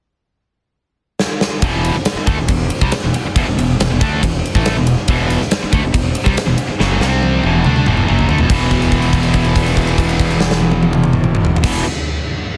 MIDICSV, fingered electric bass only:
0, 0, Header, 1, 3, 480
1, 0, Start_track
1, 0, Key_signature, 1, "minor"
1, 0, Tempo, 431034
1, 1807, Time_signature, 4, 2, 24, 8
1, 6606, Tempo, 425532
1, 14095, End_track
2, 0, Start_track
2, 0, Title_t, "Fingered electric bass"
2, 0, Program_c, 0, 33
2, 1804, Note_on_c, 0, 28, 89
2, 2141, Note_off_c, 0, 28, 0
2, 2533, Note_on_c, 0, 38, 103
2, 2643, Note_off_c, 0, 38, 0
2, 2652, Note_on_c, 0, 28, 76
2, 2763, Note_off_c, 0, 28, 0
2, 2772, Note_on_c, 0, 28, 81
2, 2995, Note_off_c, 0, 28, 0
2, 3130, Note_on_c, 0, 36, 95
2, 3242, Note_off_c, 0, 36, 0
2, 3379, Note_on_c, 0, 28, 83
2, 3480, Note_off_c, 0, 28, 0
2, 3738, Note_on_c, 0, 28, 96
2, 3847, Note_off_c, 0, 28, 0
2, 3864, Note_on_c, 0, 28, 79
2, 3970, Note_off_c, 0, 28, 0
2, 3989, Note_on_c, 0, 28, 91
2, 4205, Note_off_c, 0, 28, 0
2, 4224, Note_on_c, 0, 28, 89
2, 4331, Note_off_c, 0, 28, 0
2, 4356, Note_on_c, 0, 28, 83
2, 4457, Note_off_c, 0, 28, 0
2, 4475, Note_on_c, 0, 38, 97
2, 4688, Note_off_c, 0, 38, 0
2, 4713, Note_on_c, 0, 28, 82
2, 4927, Note_off_c, 0, 28, 0
2, 5069, Note_on_c, 0, 33, 100
2, 5285, Note_off_c, 0, 33, 0
2, 5301, Note_on_c, 0, 28, 81
2, 5520, Note_off_c, 0, 28, 0
2, 5660, Note_on_c, 0, 28, 96
2, 5990, Note_off_c, 0, 28, 0
2, 6384, Note_on_c, 0, 38, 106
2, 6488, Note_off_c, 0, 38, 0
2, 6495, Note_on_c, 0, 28, 74
2, 6603, Note_off_c, 0, 28, 0
2, 6616, Note_on_c, 0, 28, 81
2, 6837, Note_off_c, 0, 28, 0
2, 6977, Note_on_c, 0, 36, 95
2, 7086, Note_off_c, 0, 36, 0
2, 7217, Note_on_c, 0, 28, 80
2, 7326, Note_off_c, 0, 28, 0
2, 7589, Note_on_c, 0, 30, 98
2, 7802, Note_off_c, 0, 30, 0
2, 7809, Note_on_c, 0, 36, 98
2, 8258, Note_off_c, 0, 36, 0
2, 8304, Note_on_c, 0, 28, 103
2, 8523, Note_off_c, 0, 28, 0
2, 8553, Note_on_c, 0, 38, 96
2, 8767, Note_off_c, 0, 38, 0
2, 8787, Note_on_c, 0, 28, 108
2, 9004, Note_off_c, 0, 28, 0
2, 9035, Note_on_c, 0, 30, 88
2, 9248, Note_off_c, 0, 30, 0
2, 9277, Note_on_c, 0, 38, 88
2, 9377, Note_off_c, 0, 38, 0
2, 9398, Note_on_c, 0, 28, 87
2, 9498, Note_off_c, 0, 28, 0
2, 9504, Note_on_c, 0, 28, 96
2, 12941, Note_off_c, 0, 28, 0
2, 13040, Note_on_c, 0, 28, 106
2, 13241, Note_off_c, 0, 28, 0
2, 14095, End_track
3, 0, Start_track
3, 0, Title_t, "Muted fingered electric bass strokes"
3, 2169, Note_on_c, 9, 29, 38
3, 2280, Note_off_c, 9, 29, 0
3, 2394, Note_on_c, 9, 29, 44
3, 2506, Note_off_c, 9, 29, 0
3, 3255, Note_on_c, 9, 29, 39
3, 3367, Note_off_c, 9, 29, 0
3, 3487, Note_on_c, 9, 29, 38
3, 3598, Note_off_c, 9, 29, 0
3, 3619, Note_on_c, 9, 29, 42
3, 3730, Note_off_c, 9, 29, 0
3, 6034, Note_on_c, 9, 29, 40
3, 6146, Note_off_c, 9, 29, 0
3, 6275, Note_on_c, 9, 29, 45
3, 6387, Note_off_c, 9, 29, 0
3, 7109, Note_on_c, 9, 29, 35
3, 7222, Note_off_c, 9, 29, 0
3, 7347, Note_on_c, 9, 29, 39
3, 7459, Note_off_c, 9, 29, 0
3, 7459, Note_on_c, 9, 29, 42
3, 7571, Note_off_c, 9, 29, 0
3, 14095, End_track
0, 0, End_of_file